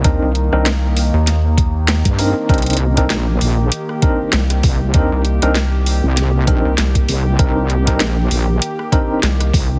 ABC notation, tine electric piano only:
X:1
M:4/4
L:1/16
Q:"Swing 16ths" 1/4=98
K:Cm
V:1 name="Tine electric piano"
[CDEB]2 z [CDEB] z8 z2 [CDEB]2 | [CDEB]2 z [CDEB] z6 [CDEB]2 z4 | [CDEB]2 z [CDEB] z6 [CDEB]2 z4 | [CDEB]2 z [CDEB] z6 [CDEB]2 z4 |]